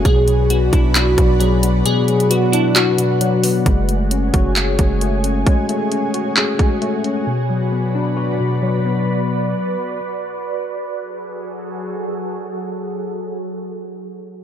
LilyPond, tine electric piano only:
\new Staff \with { instrumentName = "Tine electric piano" } { \time 4/4 \key fis \minor \tempo 4 = 133 b,8 fis8 b8 d'8 fis'8 b,8 fis8 b8 | b,8 fis8 b8 d'8 fis'8 b,8 fis8 b8 | gis8 a8 cis'8 fis'8 gis'8 gis8 a8 cis'8 | gis8 a8 cis'8 fis'8 gis'8 gis8 a8 cis'8 |
b,8 fis8 b8 d'8 fis'8 b,8 fis8 b8~ | b2 r2 | r1 | r1 | }